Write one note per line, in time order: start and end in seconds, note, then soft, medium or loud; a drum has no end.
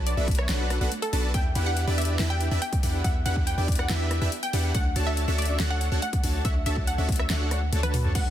0.00 0.15 B1 loud
0.00 0.15 D4 loud
0.00 0.15 F#4 medium
0.00 0.15 A4 medium
0.00 0.15 B4 medium
0.00 0.15 A5 loud
0.06 0.12 D4 medium
0.06 0.25 D5 loud
0.06 closed hi-hat medium
0.17 0.47 B1 loud
0.17 0.22 B3 medium
0.17 0.47 D4 medium
0.17 0.47 F#4 medium
0.17 0.47 A4 medium
0.17 0.47 B4 medium
0.17 0.47 E5 loud
0.28 0.33 A3 medium
0.28 kick loud
0.28 closed hi-hat soft
0.31 closed hi-hat medium
0.35 0.46 B3 medium
0.35 0.63 C#5 loud
0.35 cross-stick medium
0.35 closed hi-hat medium
0.49 0.79 B1 medium
0.49 0.79 D4 medium
0.49 0.57 D4 medium
0.49 0.79 F#4 medium
0.49 0.79 A4 medium
0.49 0.79 B4 medium
0.49 0.78 F#5 loud
0.49 0.79 F#5 loud
0.49 snare loud
0.49 closed hi-hat medium
0.60 0.63 F#4 medium
0.70 0.75 F#4 medium
0.70 cross-stick medium
0.70 closed hi-hat medium
0.81 0.88 B1 loud
0.81 0.86 B3 loud
0.81 0.90 D4 medium
0.81 0.90 F#4 medium
0.81 0.90 A4 medium
0.81 0.90 B4 medium
0.81 0.90 F#5 medium
0.92 0.99 A3 medium
0.92 closed hi-hat medium
1.02 1.05 A3 medium
1.02 1.21 A4 medium
1.02 closed hi-hat medium
1.13 1.36 B1 loud
1.13 1.20 B3 medium
1.13 1.32 D4 medium
1.13 1.32 F#4 medium
1.13 1.32 A4 medium
1.13 1.32 B4 medium
1.13 1.32 A5 medium
1.13 open hi-hat medium
1.24 1.29 D4 medium
1.34 1.53 E2 loud
1.34 1.39 B3 loud
1.34 1.44 E4 medium
1.34 1.44 G4 medium
1.34 1.44 B4 medium
1.34 1.44 E5 loud
1.34 1.53 G5 loud
1.34 kick loud
1.34 closed hi-hat medium
1.45 1.48 E4 medium
1.55 1.85 E2 loud
1.55 1.85 D4 loud
1.55 1.85 E4 medium
1.55 1.61 E4 medium
1.55 1.85 G4 medium
1.55 1.85 B4 medium
1.55 1.85 F#5 loud
1.55 closed hi-hat medium
1.66 1.71 G4 loud
1.66 1.85 F#5 loud
1.77 1.82 E4 medium
1.77 closed hi-hat medium
1.87 2.17 E2 medium
1.87 2.17 D4 medium
1.87 1.92 D4 medium
1.87 2.17 E4 medium
1.87 2.17 G4 medium
1.87 2.17 B4 medium
1.87 2.17 D5 loud
1.98 2.01 B3 medium
1.98 2.17 E5 medium
1.98 closed hi-hat soft
2.02 closed hi-hat medium
2.05 2.16 D4 medium
2.05 closed hi-hat medium
2.19 2.49 E2 loud
2.19 2.49 D4 medium
2.19 2.49 E4 medium
2.19 2.27 E4 medium
2.19 2.49 G4 medium
2.19 2.49 B4 medium
2.19 2.49 E5 loud
2.19 snare loud
2.19 closed hi-hat medium
2.30 2.33 G4 medium
2.30 2.49 G5 loud
2.41 2.46 E4 medium
2.41 closed hi-hat medium
2.51 2.58 E2 loud
2.51 2.61 D4 medium
2.51 2.56 D4 loud
2.51 2.61 E4 medium
2.51 2.61 G4 medium
2.51 2.61 B4 medium
2.51 2.61 E5 medium
2.62 2.67 B3 medium
2.62 2.87 G5 medium
2.62 closed hi-hat medium
2.73 2.76 B3 medium
2.73 kick loud
2.73 closed hi-hat medium
2.83 3.02 E2 loud
2.83 3.02 D4 medium
2.83 3.02 E4 medium
2.83 2.88 E4 medium
2.83 3.02 G4 medium
2.83 3.02 B4 medium
2.83 3.02 F#5 medium
2.83 open hi-hat loud
2.94 2.99 G4 medium
3.04 3.24 E2 medium
3.04 3.09 B3 loud
3.04 3.14 E4 medium
3.04 3.14 B4 medium
3.04 3.14 E5 loud
3.04 3.17 F#5 medium
3.04 kick loud
3.04 closed hi-hat medium
3.15 3.18 E4 medium
3.26 3.56 E2 loud
3.26 3.55 D4 loud
3.26 3.55 E4 medium
3.26 3.31 E4 medium
3.26 3.55 G4 medium
3.26 3.55 B4 medium
3.26 3.38 F#5 medium
3.26 3.55 F#5 loud
3.26 closed hi-hat medium
3.36 3.41 G4 loud
3.36 kick medium
3.47 3.52 E4 medium
3.47 3.66 G5 medium
3.47 closed hi-hat medium
3.58 3.87 E2 loud
3.58 3.63 D4 medium
3.58 3.87 D4 medium
3.58 3.87 E4 medium
3.58 3.87 G4 medium
3.58 3.87 B4 medium
3.58 3.87 D5 loud
3.68 3.71 B3 medium
3.68 kick loud
3.68 closed hi-hat soft
3.72 closed hi-hat medium
3.75 3.86 D4 medium
3.75 4.04 F#5 loud
3.75 cross-stick medium
3.75 closed hi-hat medium
3.90 4.19 E2 medium
3.90 4.19 D4 medium
3.90 3.97 E4 medium
3.90 4.19 E4 medium
3.90 4.19 G4 medium
3.90 4.19 B4 medium
3.90 4.19 E5 loud
3.90 snare loud
3.90 closed hi-hat medium
4.00 4.03 G4 medium
4.11 4.16 E4 medium
4.11 cross-stick medium
4.11 closed hi-hat medium
4.22 4.29 E2 loud
4.22 4.26 D4 loud
4.22 4.31 D4 medium
4.22 4.31 E4 medium
4.22 4.31 G4 medium
4.22 4.31 B4 medium
4.22 4.31 E5 medium
4.32 4.37 B3 medium
4.32 closed hi-hat medium
4.43 4.46 B3 medium
4.43 4.62 G5 medium
4.43 closed hi-hat medium
4.53 4.73 E2 loud
4.53 4.72 D4 medium
4.53 4.58 E4 medium
4.53 4.72 E4 medium
4.53 4.72 G4 medium
4.53 4.72 B4 medium
4.53 4.72 F#5 medium
4.53 4.72 F#5 loud
4.53 open hi-hat loud
4.64 4.69 G4 medium
4.75 4.94 D2 loud
4.75 4.80 A3 loud
4.75 4.84 D4 medium
4.75 4.84 A4 medium
4.75 4.84 C#5 medium
4.75 4.84 F#5 loud
4.75 4.93 F#5 loud
4.75 kick loud
4.75 closed hi-hat medium
4.85 4.88 D4 medium
4.96 5.26 D2 loud
4.96 5.01 D4 medium
4.96 5.25 D4 loud
4.96 5.25 F#4 medium
4.96 5.25 A4 medium
4.96 5.25 C#5 medium
4.96 5.25 A5 loud
4.96 closed hi-hat medium
5.07 5.12 F#4 loud
5.07 5.25 E5 medium
5.17 5.22 D4 medium
5.17 closed hi-hat medium
5.28 5.58 D2 loud
5.28 5.33 C#4 medium
5.28 5.57 D4 loud
5.28 5.57 F#4 medium
5.28 5.57 A4 medium
5.28 5.57 C#5 medium
5.28 5.57 E5 loud
5.38 5.42 A3 medium
5.38 5.57 D5 loud
5.38 closed hi-hat medium
5.42 closed hi-hat medium
5.45 5.57 C#4 medium
5.45 closed hi-hat medium
5.60 5.90 D2 loud
5.60 5.67 D4 medium
5.60 5.89 D4 medium
5.60 5.89 F#4 medium
5.60 5.89 A4 medium
5.60 5.89 C#5 medium
5.60 5.89 F#5 loud
5.60 snare loud
5.60 closed hi-hat medium
5.70 5.73 F#4 medium
5.70 5.89 F#5 loud
5.81 5.86 D4 medium
5.81 closed hi-hat medium
5.92 5.99 D2 loud
5.92 5.97 C#4 loud
5.92 6.01 D4 medium
5.92 6.01 F#4 medium
5.92 6.01 A4 medium
5.92 6.01 C#5 medium
5.92 6.01 F#5 medium
6.02 6.07 A3 medium
6.02 6.27 F#5 loud
6.02 closed hi-hat medium
6.13 kick loud
6.13 closed hi-hat medium
6.24 6.43 D2 loud
6.24 6.29 D4 medium
6.24 6.42 D4 medium
6.24 6.42 F#4 medium
6.24 6.42 A4 medium
6.24 6.42 C#5 medium
6.24 6.42 A5 medium
6.24 open hi-hat loud
6.34 6.39 F#4 medium
6.45 6.64 D2 loud
6.45 6.50 A3 loud
6.45 6.54 D4 loud
6.45 6.54 F#4 medium
6.45 6.54 A4 medium
6.45 6.54 C#5 medium
6.45 6.57 E5 medium
6.45 6.54 F#5 loud
6.45 kick loud
6.45 closed hi-hat medium
6.56 6.59 D4 medium
6.66 6.96 D2 loud
6.66 6.96 D4 loud
6.66 6.71 D4 medium
6.66 6.96 F#4 medium
6.66 6.96 A4 medium
6.66 6.96 C#5 medium
6.66 6.79 E5 medium
6.66 6.96 A5 loud
6.66 closed hi-hat medium
6.77 6.82 F#4 loud
6.77 kick medium
6.87 6.93 D4 medium
6.87 7.06 F#5 loud
6.87 closed hi-hat medium
6.98 7.28 D2 loud
6.98 7.03 C#4 medium
6.98 7.27 D4 loud
6.98 7.27 F#4 medium
6.98 7.27 A4 medium
6.98 7.27 C#5 medium
6.98 7.27 E5 loud
7.09 7.12 A3 medium
7.09 kick loud
7.09 closed hi-hat medium
7.12 closed hi-hat medium
7.16 7.27 C#4 medium
7.16 7.44 E5 loud
7.16 cross-stick medium
7.16 closed hi-hat medium
7.30 7.70 D2 medium
7.30 7.59 D4 medium
7.30 7.38 D4 medium
7.30 7.59 F#4 medium
7.30 7.59 A4 medium
7.30 7.59 C#5 medium
7.30 7.59 F#5 loud
7.30 snare loud
7.30 closed hi-hat medium
7.41 7.44 F#4 medium
7.51 7.54 A3 medium
7.51 cross-stick medium
7.51 closed hi-hat medium
7.62 7.67 A3 medium
7.72 8.17 D2 loud
7.72 7.80 A3 loud
7.72 8.13 D4 medium
7.72 8.13 F#4 medium
7.72 8.13 A4 medium
7.72 8.13 C#5 medium
7.72 8.13 A5 medium
7.72 closed hi-hat medium
7.83 7.91 D4 medium
7.83 8.02 B4 loud
7.83 closed hi-hat medium
7.83 high tom medium
7.94 8.01 F#4 medium
7.94 open hi-hat loud
7.94 mid tom medium
8.05 8.09 D4 medium
8.05 mid tom medium
8.15 8.30 B1 medium
8.15 8.20 A3 loud
8.15 8.25 D4 medium
8.15 8.25 F#4 medium
8.15 8.25 A4 medium
8.15 8.25 B4 medium
8.15 8.25 F#5 loud
8.15 8.30 F#5 loud
8.15 8.25 F#5 loud
8.15 kick loud
8.15 closed hi-hat medium
8.15 crash medium
8.26 8.29 D4 medium